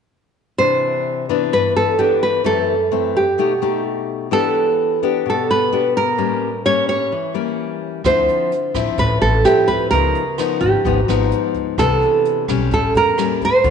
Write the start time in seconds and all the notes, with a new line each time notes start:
0.58 C3 E3 D4 C5
1.29 E3 B3 D4
1.53 G2 B4
1.76 A4
1.99 E3 B3 D4 G4
2.23 B4
2.44 F#2 E3 A3 C4 A4
2.92 E3 A3 C4
3.17 G4
3.38 B2 A3 D#4 G4
3.62 A3 D#4 G4
4.31 E3 B3 D4 G4 A4
5.03 B3 D4 G4
5.26 B2
5.30 A4
5.51 B4
5.73 B3 D4 G4
5.97 A#4
6.18 A2 G3 A#3 C#4
6.66 G3 A#3 C#4 C#5
6.89 C#5
7.12 E3
7.34 G3 A#3 C#4
8.04 D2 D3 F3 C4 E4 C5, kick, cross-stick, closed hi-hat
8.28 closed hi-hat
8.52 closed hi-hat
8.74 A1 F3 C4 E4, kick, cross-stick, closed hi-hat
8.98 A1 A2 B4, kick, closed hi-hat
9.21 A1 A4, closed hi-hat
9.45 F3 C4 E4 G4, cross-stick, closed hi-hat
9.68 B4, kick, closed hi-hat
9.91 C#2 C#3 F3 B3 D#4 A#4, kick, closed hi-hat
10.15 closed hi-hat
10.38 F3 B3 D#4, cross-stick, closed hi-hat
10.61 G#1 G4, kick, closed hi-hat
10.85 G#1 G#2 F3 B3 D#4, kick, closed hi-hat
11.08 G#1 F3 B3 D#4 F4, cross-stick, closed hi-hat
11.31 closed hi-hat
11.54 kick, closed hi-hat
11.78 C2 C3 E3 B3 D4 A4, kick, cross-stick, closed hi-hat
12.01 closed hi-hat
12.25 closed hi-hat
12.48 B1 G3 C#4, kick, cross-stick, closed hi-hat
12.71 A1 A2 A4, kick, closed hi-hat
12.94 E2 A#4, closed hi-hat
13.18 G3 A#3 C#4, cross-stick, closed hi-hat
13.41 C5, kick, closed hi-hat
13.64 D2 D3 A3 C4 F4, kick, closed hi-hat